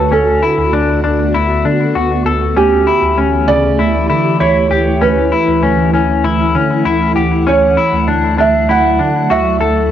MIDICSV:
0, 0, Header, 1, 5, 480
1, 0, Start_track
1, 0, Key_signature, 2, "major"
1, 0, Tempo, 612245
1, 93, Time_signature, 4, 2, 24, 8
1, 7773, End_track
2, 0, Start_track
2, 0, Title_t, "Felt piano"
2, 0, Program_c, 0, 0
2, 102, Note_on_c, 0, 69, 78
2, 786, Note_off_c, 0, 69, 0
2, 2016, Note_on_c, 0, 67, 81
2, 2727, Note_on_c, 0, 74, 104
2, 2756, Note_off_c, 0, 67, 0
2, 3450, Note_on_c, 0, 73, 87
2, 3471, Note_off_c, 0, 74, 0
2, 3932, Note_on_c, 0, 71, 71
2, 3946, Note_off_c, 0, 73, 0
2, 4621, Note_off_c, 0, 71, 0
2, 5868, Note_on_c, 0, 73, 83
2, 6588, Note_on_c, 0, 76, 85
2, 6601, Note_off_c, 0, 73, 0
2, 6825, Note_on_c, 0, 78, 84
2, 6827, Note_off_c, 0, 76, 0
2, 7300, Note_on_c, 0, 76, 88
2, 7313, Note_off_c, 0, 78, 0
2, 7745, Note_off_c, 0, 76, 0
2, 7773, End_track
3, 0, Start_track
3, 0, Title_t, "Clean electric guitar"
3, 0, Program_c, 1, 27
3, 0, Note_on_c, 1, 69, 69
3, 92, Note_off_c, 1, 69, 0
3, 93, Note_on_c, 1, 61, 82
3, 332, Note_off_c, 1, 61, 0
3, 334, Note_on_c, 1, 64, 69
3, 573, Note_off_c, 1, 64, 0
3, 573, Note_on_c, 1, 62, 74
3, 804, Note_off_c, 1, 62, 0
3, 814, Note_on_c, 1, 62, 72
3, 1053, Note_off_c, 1, 62, 0
3, 1054, Note_on_c, 1, 64, 80
3, 1293, Note_off_c, 1, 64, 0
3, 1295, Note_on_c, 1, 62, 69
3, 1531, Note_on_c, 1, 66, 73
3, 1533, Note_off_c, 1, 62, 0
3, 1768, Note_off_c, 1, 66, 0
3, 1771, Note_on_c, 1, 69, 67
3, 2011, Note_on_c, 1, 61, 80
3, 2012, Note_off_c, 1, 69, 0
3, 2249, Note_on_c, 1, 64, 69
3, 2252, Note_off_c, 1, 61, 0
3, 2490, Note_on_c, 1, 61, 72
3, 2491, Note_off_c, 1, 64, 0
3, 2729, Note_on_c, 1, 49, 66
3, 2731, Note_off_c, 1, 61, 0
3, 2971, Note_off_c, 1, 49, 0
3, 2971, Note_on_c, 1, 64, 76
3, 3201, Note_off_c, 1, 64, 0
3, 3210, Note_on_c, 1, 64, 72
3, 3442, Note_off_c, 1, 64, 0
3, 3451, Note_on_c, 1, 64, 77
3, 3687, Note_off_c, 1, 64, 0
3, 3690, Note_on_c, 1, 67, 76
3, 3931, Note_off_c, 1, 67, 0
3, 3931, Note_on_c, 1, 61, 87
3, 4171, Note_on_c, 1, 64, 69
3, 4172, Note_off_c, 1, 61, 0
3, 4412, Note_off_c, 1, 64, 0
3, 4412, Note_on_c, 1, 61, 74
3, 4645, Note_off_c, 1, 61, 0
3, 4654, Note_on_c, 1, 61, 74
3, 4893, Note_off_c, 1, 61, 0
3, 4896, Note_on_c, 1, 64, 84
3, 5134, Note_off_c, 1, 64, 0
3, 5135, Note_on_c, 1, 61, 65
3, 5374, Note_off_c, 1, 61, 0
3, 5374, Note_on_c, 1, 64, 73
3, 5609, Note_off_c, 1, 64, 0
3, 5612, Note_on_c, 1, 67, 69
3, 5852, Note_off_c, 1, 67, 0
3, 5854, Note_on_c, 1, 61, 85
3, 6093, Note_off_c, 1, 61, 0
3, 6093, Note_on_c, 1, 64, 67
3, 6332, Note_on_c, 1, 62, 70
3, 6333, Note_off_c, 1, 64, 0
3, 6563, Note_off_c, 1, 62, 0
3, 6572, Note_on_c, 1, 62, 75
3, 6812, Note_off_c, 1, 62, 0
3, 6813, Note_on_c, 1, 64, 81
3, 7050, Note_on_c, 1, 62, 68
3, 7052, Note_off_c, 1, 64, 0
3, 7291, Note_off_c, 1, 62, 0
3, 7292, Note_on_c, 1, 66, 77
3, 7527, Note_off_c, 1, 66, 0
3, 7530, Note_on_c, 1, 69, 71
3, 7771, Note_off_c, 1, 69, 0
3, 7773, End_track
4, 0, Start_track
4, 0, Title_t, "Ambient pad"
4, 0, Program_c, 2, 92
4, 0, Note_on_c, 2, 50, 72
4, 0, Note_on_c, 2, 57, 71
4, 0, Note_on_c, 2, 66, 94
4, 97, Note_on_c, 2, 59, 67
4, 1983, Note_off_c, 2, 50, 0
4, 1983, Note_off_c, 2, 66, 0
4, 1996, Note_off_c, 2, 59, 0
4, 2013, Note_on_c, 2, 64, 71
4, 2014, Note_on_c, 2, 67, 85
4, 2016, Note_on_c, 2, 52, 84
4, 3914, Note_off_c, 2, 67, 0
4, 3937, Note_on_c, 2, 78, 88
4, 5823, Note_off_c, 2, 52, 0
4, 5851, Note_on_c, 2, 54, 74
4, 7741, Note_off_c, 2, 64, 0
4, 7773, Note_off_c, 2, 54, 0
4, 7773, Note_off_c, 2, 57, 0
4, 7773, Note_off_c, 2, 78, 0
4, 7773, End_track
5, 0, Start_track
5, 0, Title_t, "Tine electric piano"
5, 0, Program_c, 3, 4
5, 96, Note_on_c, 3, 38, 94
5, 306, Note_off_c, 3, 38, 0
5, 455, Note_on_c, 3, 38, 86
5, 560, Note_off_c, 3, 38, 0
5, 575, Note_on_c, 3, 38, 91
5, 785, Note_off_c, 3, 38, 0
5, 815, Note_on_c, 3, 38, 83
5, 1025, Note_off_c, 3, 38, 0
5, 1055, Note_on_c, 3, 38, 86
5, 1265, Note_off_c, 3, 38, 0
5, 1294, Note_on_c, 3, 50, 97
5, 1504, Note_off_c, 3, 50, 0
5, 1532, Note_on_c, 3, 38, 74
5, 1743, Note_off_c, 3, 38, 0
5, 1770, Note_on_c, 3, 38, 80
5, 1982, Note_off_c, 3, 38, 0
5, 2010, Note_on_c, 3, 38, 92
5, 2222, Note_off_c, 3, 38, 0
5, 2368, Note_on_c, 3, 38, 81
5, 2475, Note_off_c, 3, 38, 0
5, 2489, Note_on_c, 3, 38, 86
5, 2702, Note_off_c, 3, 38, 0
5, 2731, Note_on_c, 3, 38, 85
5, 2943, Note_off_c, 3, 38, 0
5, 2971, Note_on_c, 3, 38, 84
5, 3183, Note_off_c, 3, 38, 0
5, 3212, Note_on_c, 3, 50, 97
5, 3423, Note_off_c, 3, 50, 0
5, 3452, Note_on_c, 3, 38, 84
5, 3663, Note_off_c, 3, 38, 0
5, 3690, Note_on_c, 3, 38, 81
5, 3902, Note_off_c, 3, 38, 0
5, 3929, Note_on_c, 3, 38, 104
5, 4142, Note_off_c, 3, 38, 0
5, 4291, Note_on_c, 3, 38, 74
5, 4397, Note_off_c, 3, 38, 0
5, 4412, Note_on_c, 3, 38, 103
5, 4623, Note_off_c, 3, 38, 0
5, 4651, Note_on_c, 3, 38, 83
5, 4863, Note_off_c, 3, 38, 0
5, 4893, Note_on_c, 3, 38, 92
5, 5133, Note_off_c, 3, 38, 0
5, 5135, Note_on_c, 3, 50, 95
5, 5345, Note_off_c, 3, 50, 0
5, 5374, Note_on_c, 3, 38, 77
5, 5585, Note_off_c, 3, 38, 0
5, 5614, Note_on_c, 3, 38, 82
5, 5825, Note_off_c, 3, 38, 0
5, 5858, Note_on_c, 3, 38, 82
5, 6067, Note_off_c, 3, 38, 0
5, 6215, Note_on_c, 3, 38, 78
5, 6319, Note_off_c, 3, 38, 0
5, 6332, Note_on_c, 3, 38, 95
5, 6544, Note_off_c, 3, 38, 0
5, 6575, Note_on_c, 3, 38, 90
5, 6785, Note_off_c, 3, 38, 0
5, 6815, Note_on_c, 3, 38, 91
5, 7054, Note_off_c, 3, 38, 0
5, 7055, Note_on_c, 3, 50, 88
5, 7265, Note_off_c, 3, 50, 0
5, 7294, Note_on_c, 3, 38, 74
5, 7504, Note_off_c, 3, 38, 0
5, 7532, Note_on_c, 3, 38, 85
5, 7744, Note_off_c, 3, 38, 0
5, 7773, End_track
0, 0, End_of_file